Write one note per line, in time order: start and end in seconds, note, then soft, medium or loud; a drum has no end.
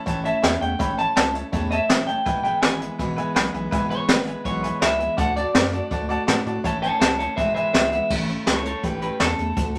0.06 0.33 A1 medium
0.06 0.25 A2 loud
0.06 0.25 E3 medium
0.06 0.25 A3 medium
0.06 0.24 C#4 loud
0.06 0.23 E4 loud
0.06 0.17 C#5 loud
0.06 0.18 E5 medium
0.06 0.18 A5 loud
0.06 kick loud
0.06 closed hi-hat medium
0.24 0.42 A3 soft
0.24 0.43 C#4 medium
0.24 0.43 E4 medium
0.24 0.35 C#5 loud
0.24 0.36 E5 medium
0.24 0.61 E5 medium
0.24 0.36 A5 loud
0.24 closed hi-hat medium
0.42 0.56 E2 medium
0.42 0.61 E3 medium
0.42 0.61 A3 medium
0.42 0.61 C#4 medium
0.42 0.59 E4 medium
0.42 0.54 C#5 loud
0.42 0.54 E5 medium
0.42 0.55 G#5 loud
0.42 snare loud
0.42 closed hi-hat medium
0.61 0.75 E2 loud
0.61 0.78 A3 soft
0.61 0.79 C#4 medium
0.61 0.79 E4 medium
0.61 0.72 C#5 medium
0.61 0.73 E5 medium
0.61 0.73 F#5 medium
0.61 0.97 G5 medium
0.61 closed hi-hat medium
0.79 1.06 A1 loud
0.79 0.98 A2 medium
0.79 0.98 E3 medium
0.79 0.98 A3 medium
0.79 0.97 C#4 medium
0.79 0.96 E4 medium
0.79 0.91 C#5 loud
0.79 0.91 E5 medium
0.79 0.91 B5 loud
0.79 kick loud
0.79 closed hi-hat medium
0.97 1.15 A3 soft
0.97 1.16 C#4 soft
0.97 1.16 E4 medium
0.97 1.09 C#5 medium
0.97 1.09 E5 medium
0.97 1.15 A5 medium
0.97 1.10 B5 medium
0.97 closed hi-hat medium
1.15 1.43 C#2 loud
1.15 1.34 E3 medium
1.15 1.35 A3 medium
1.15 1.34 C#4 medium
1.15 1.33 E4 medium
1.15 1.27 C#5 medium
1.15 1.28 E5 medium
1.15 1.34 A5 loud
1.15 1.28 A5 medium
1.15 snare loud
1.15 closed hi-hat medium
1.34 1.52 A3 soft
1.34 1.52 C#4 soft
1.34 1.53 E4 soft
1.34 1.46 C#5 medium
1.34 1.46 E5 medium
1.34 1.46 A5 medium
1.34 closed hi-hat medium
1.52 1.79 E2 medium
1.52 1.71 A2 medium
1.52 1.71 E3 medium
1.52 1.72 A3 medium
1.52 1.70 C#4 medium
1.52 1.69 E4 medium
1.52 1.64 C#5 medium
1.52 1.64 E5 medium
1.52 1.65 A5 loud
1.52 kick loud
1.52 closed hi-hat medium
1.71 1.89 A3 medium
1.71 1.89 C#4 medium
1.71 1.89 E4 medium
1.71 1.82 C#5 loud
1.71 2.07 E5 medium
1.71 1.82 E5 medium
1.71 1.83 A5 loud
1.71 closed hi-hat medium
1.89 2.16 D#1 medium
1.89 2.08 E3 medium
1.89 2.08 A3 medium
1.89 2.07 C#4 medium
1.89 2.06 E4 medium
1.89 2.00 C#5 medium
1.89 2.01 E5 medium
1.89 2.01 G#5 loud
1.89 snare loud
1.89 closed hi-hat medium
2.07 2.26 A3 soft
2.07 2.26 C#4 medium
2.07 2.26 E4 medium
2.07 2.18 C#5 medium
2.07 2.19 E5 medium
2.07 2.42 G5 medium
2.07 2.19 A5 medium
2.07 closed hi-hat medium
2.25 2.52 E1 medium
2.25 2.44 E2 medium
2.25 2.44 B2 medium
2.25 2.44 E3 medium
2.25 2.45 G#3 medium
2.25 2.44 B3 medium
2.25 2.43 E4 medium
2.25 2.37 B4 loud
2.25 2.37 E5 loud
2.25 2.38 G#5 loud
2.25 kick loud
2.25 closed hi-hat medium
2.43 2.61 E3 soft
2.43 2.62 G#3 medium
2.43 2.63 B3 medium
2.43 2.63 E4 medium
2.43 2.55 B4 medium
2.43 2.55 E5 medium
2.43 2.62 G5 medium
2.43 2.56 G#5 medium
2.43 closed hi-hat medium
2.62 2.89 G#1 loud
2.62 2.81 E3 medium
2.62 2.81 G#3 medium
2.62 2.80 B3 medium
2.62 2.80 E4 medium
2.62 2.73 B4 medium
2.62 2.74 E5 medium
2.62 2.80 G#5 loud
2.62 2.74 G#5 medium
2.62 snare loud
2.62 closed hi-hat medium
2.80 2.99 E3 soft
2.80 2.99 G#3 soft
2.80 3.00 B3 soft
2.80 2.99 E4 soft
2.80 2.92 B4 medium
2.80 2.92 E5 medium
2.80 2.92 G#5 medium
2.80 closed hi-hat medium
2.98 3.25 E1 medium
2.98 3.18 E2 medium
2.98 3.18 B2 medium
2.98 3.18 E3 medium
2.98 3.18 G#3 loud
2.98 3.18 B3 loud
2.98 3.17 E4 loud
2.98 3.10 B4 medium
2.98 3.10 E5 medium
2.98 3.11 G#5 medium
2.98 kick medium
2.98 closed hi-hat medium
3.17 3.35 E3 medium
3.17 3.35 G#3 medium
3.17 3.36 B3 medium
3.17 3.36 E4 medium
3.17 3.28 B4 loud
3.17 3.29 E5 loud
3.17 3.29 G#5 loud
3.17 closed hi-hat medium
3.35 3.49 B1 loud
3.35 3.54 E3 medium
3.35 3.54 G#3 medium
3.35 3.54 B3 medium
3.35 3.53 E4 medium
3.35 3.46 B4 loud
3.35 3.47 E5 loud
3.35 3.47 G#5 loud
3.35 snare loud
3.35 closed hi-hat medium
3.53 3.67 B1 medium
3.53 3.72 E3 medium
3.53 3.72 G#3 medium
3.53 3.72 B3 medium
3.53 3.72 E4 medium
3.53 3.65 B4 medium
3.53 3.65 E5 medium
3.53 3.66 G#5 loud
3.53 closed hi-hat soft
3.71 3.99 E1 medium
3.71 3.91 E2 medium
3.71 3.91 B2 medium
3.71 3.91 E3 medium
3.71 3.90 G#3 medium
3.71 3.90 B3 medium
3.71 3.89 E4 medium
3.71 3.83 B4 loud
3.71 3.83 E5 loud
3.71 3.84 G#5 loud
3.71 kick loud
3.71 closed hi-hat medium
3.90 4.07 E3 soft
3.90 4.08 G#3 soft
3.90 4.09 B3 medium
3.90 4.09 E4 medium
3.90 4.01 B4 medium
3.90 4.09 C#5 loud
3.90 4.02 E5 medium
3.90 4.02 G#5 medium
3.90 closed hi-hat medium
4.08 4.35 G#1 loud
4.08 4.27 E3 medium
4.08 4.27 G#3 medium
4.08 4.26 B3 medium
4.08 4.26 E4 medium
4.08 4.19 B4 medium
4.08 4.45 B4 medium
4.08 4.20 E5 medium
4.08 4.20 G#5 medium
4.08 snare loud
4.08 closed hi-hat medium
4.27 4.45 E3 soft
4.27 4.45 G#3 soft
4.27 4.45 B3 soft
4.27 4.45 E4 medium
4.27 4.38 B4 medium
4.27 4.38 E5 medium
4.27 4.39 G#5 medium
4.27 closed hi-hat medium
4.44 4.71 B1 medium
4.44 4.64 E2 medium
4.44 4.64 B2 medium
4.44 4.64 E3 loud
4.44 4.64 G#3 medium
4.44 4.63 B3 loud
4.44 4.62 E4 medium
4.44 4.56 B4 medium
4.44 4.81 C#5 medium
4.44 4.56 E5 medium
4.44 4.57 G#5 medium
4.44 kick loud
4.44 closed hi-hat medium
4.63 4.81 E3 medium
4.63 4.82 G#3 medium
4.63 4.82 B3 medium
4.63 4.82 E4 medium
4.63 4.74 B4 loud
4.63 4.75 E5 medium
4.63 4.75 G#5 loud
4.63 closed hi-hat medium
4.80 5.08 C#2 medium
4.80 5.00 E3 medium
4.80 5.01 G#3 medium
4.80 5.00 B3 medium
4.80 4.99 E4 medium
4.80 4.92 B4 medium
4.80 4.93 E5 medium
4.80 5.17 E5 loud
4.80 4.93 G#5 loud
4.80 snare loud
4.80 closed hi-hat medium
4.98 5.18 G#3 soft
4.98 5.19 B3 medium
4.98 5.19 E4 medium
4.98 5.10 B4 medium
4.98 5.11 E5 medium
4.98 5.11 G#5 medium
4.98 closed hi-hat medium
5.03 5.18 E3 medium
5.17 5.44 D2 medium
5.17 5.37 D3 medium
5.17 5.37 A3 medium
5.17 5.37 D4 medium
5.17 5.36 F#4 medium
5.17 5.29 D5 loud
5.17 5.36 F#5 loud
5.17 5.29 F#5 loud
5.17 5.30 A5 loud
5.17 kick loud
5.17 closed hi-hat medium
5.36 5.54 A3 soft
5.36 5.55 D4 soft
5.36 5.55 F#4 medium
5.36 5.47 D5 medium
5.36 6.07 D5 loud
5.36 5.48 F#5 medium
5.36 5.48 A5 medium
5.36 closed hi-hat medium
5.54 5.81 F#2 medium
5.54 5.73 D3 medium
5.54 5.74 A3 medium
5.54 5.73 D4 medium
5.54 5.65 D5 medium
5.54 5.66 F#5 medium
5.54 5.66 A5 medium
5.54 snare loud
5.54 closed hi-hat medium
5.72 5.90 A3 soft
5.72 5.91 D4 soft
5.72 5.91 F#4 soft
5.72 5.84 D5 medium
5.72 5.84 F#5 medium
5.72 5.85 A5 medium
5.72 closed hi-hat medium
5.91 6.17 D2 medium
5.91 6.09 D3 medium
5.91 6.10 A3 medium
5.91 6.09 D4 medium
5.91 6.08 F#4 medium
5.91 6.02 D5 medium
5.91 6.03 F#5 medium
5.91 6.03 A5 medium
5.91 kick loud
5.91 closed hi-hat medium
6.09 6.27 A3 medium
6.09 6.28 D4 medium
6.09 6.28 F#4 medium
6.09 6.20 D5 loud
6.09 6.21 F#5 loud
6.09 6.21 A5 loud
6.09 closed hi-hat medium
6.27 6.41 A2 medium
6.27 6.46 D3 medium
6.27 6.46 A3 medium
6.27 6.46 D4 medium
6.27 6.44 F#4 medium
6.27 6.39 D5 loud
6.27 6.39 F#5 loud
6.27 6.39 A5 loud
6.27 snare loud
6.27 closed hi-hat medium
6.46 6.59 A2 loud
6.46 6.64 A3 soft
6.46 6.65 D4 medium
6.46 6.64 F#4 medium
6.46 6.57 D5 medium
6.46 6.58 F#5 medium
6.46 6.58 A5 medium
6.46 closed hi-hat soft
6.64 6.91 A1 medium
6.64 6.83 A2 medium
6.64 6.83 E3 medium
6.64 6.83 A3 medium
6.64 6.82 C#4 medium
6.64 6.81 E4 medium
6.64 6.75 C#5 loud
6.64 6.76 E5 loud
6.64 6.76 A5 loud
6.64 kick loud
6.64 closed hi-hat loud
6.82 7.01 A3 soft
6.82 7.01 C#4 soft
6.82 7.01 E4 medium
6.82 6.93 C#5 medium
6.82 6.99 C#5 medium
6.82 6.94 E5 medium
6.82 6.99 A5 loud
6.82 6.94 A5 medium
6.82 closed hi-hat medium
7.00 7.27 C#2 medium
7.00 7.19 E3 medium
7.00 7.17 C#5 medium
7.00 7.12 C#5 medium
7.00 7.12 E5 medium
7.00 7.13 F#5 medium
7.00 7.18 A5 loud
7.00 snare loud
7.00 closed hi-hat medium
7.18 7.38 A3 soft
7.18 7.38 C#4 soft
7.18 7.38 E4 soft
7.18 7.30 C#5 medium
7.18 7.36 C#5 medium
7.18 7.30 E5 medium
7.18 7.36 A5 medium
7.18 7.31 A5 medium
7.18 closed hi-hat medium
7.36 7.64 E1 medium
7.36 7.56 E2 medium
7.36 7.56 B2 medium
7.36 7.56 E3 medium
7.36 7.56 G#3 medium
7.36 7.56 B3 medium
7.36 7.55 E4 medium
7.36 7.48 B4 medium
7.36 7.53 C5 medium
7.36 7.54 E5 loud
7.36 7.49 E5 medium
7.36 7.49 G#5 medium
7.36 kick loud
7.36 closed hi-hat medium
7.54 7.73 E3 medium
7.54 7.74 G#3 medium
7.54 7.74 B3 soft
7.54 7.74 E4 medium
7.54 7.66 B4 medium
7.54 7.72 C5 medium
7.54 7.72 E5 medium
7.54 7.67 E5 medium
7.54 7.67 G#5 loud
7.54 closed hi-hat medium
7.73 8.00 C#2 medium
7.73 7.92 E3 medium
7.73 7.93 G#3 medium
7.73 7.92 B3 medium
7.73 7.85 B4 medium
7.73 7.91 C5 medium
7.73 7.91 E5 medium
7.73 7.85 E5 medium
7.73 7.86 G#5 loud
7.73 snare loud
7.73 closed hi-hat medium
7.92 8.09 E3 soft
7.92 8.10 G#3 soft
7.92 8.11 B3 medium
7.92 8.10 E4 medium
7.92 8.03 B4 medium
7.92 8.10 E5 medium
7.92 8.04 E5 medium
7.92 8.04 F#5 medium
7.92 closed hi-hat medium
8.10 8.37 A1 medium
8.10 8.29 A2 medium
8.10 8.29 E3 medium
8.10 8.29 A3 medium
8.10 8.28 C#4 medium
8.10 8.27 E4 medium
8.10 kick loud
8.10 crash loud
8.28 8.46 A3 medium
8.28 8.47 C#4 medium
8.28 8.47 E4 medium
8.28 closed hi-hat medium
8.46 8.74 C#2 loud
8.46 8.65 E3 medium
8.46 8.66 A3 medium
8.46 8.65 C#4 medium
8.46 8.64 E4 medium
8.46 8.64 A4 medium
8.46 8.65 C#5 medium
8.46 snare loud
8.46 closed hi-hat medium
8.65 8.83 A3 soft
8.65 8.83 C#4 soft
8.65 8.83 E4 medium
8.65 8.84 A4 medium
8.65 8.84 C#5 medium
8.65 closed hi-hat medium
8.83 9.10 A1 medium
8.83 9.02 A2 medium
8.83 9.02 E3 medium
8.83 9.02 A3 medium
8.83 9.01 C#4 medium
8.83 9.00 E4 medium
8.83 9.01 G4 medium
8.83 9.01 B4 medium
8.83 kick loud
8.83 closed hi-hat medium
9.01 9.19 A3 soft
9.01 9.20 C#4 soft
9.01 9.20 E4 medium
9.01 9.19 G4 medium
9.01 9.20 B4 medium
9.01 closed hi-hat medium
9.19 9.34 E2 loud
9.19 9.38 E3 medium
9.19 9.39 A3 medium
9.19 9.38 C#4 medium
9.19 9.37 E4 medium
9.19 9.79 A4 loud
9.19 snare loud
9.19 closed hi-hat medium
9.38 9.52 E2 medium
9.38 9.56 A3 soft
9.38 9.57 C#4 medium
9.38 9.57 E4 medium
9.38 closed hi-hat medium
9.57 9.79 D2 medium
9.57 9.75 D3 medium
9.57 9.75 A3 medium
9.57 9.75 D4 medium
9.57 9.74 F#4 medium
9.57 kick loud
9.57 closed hi-hat loud
9.75 9.79 F#4 medium
9.75 closed hi-hat medium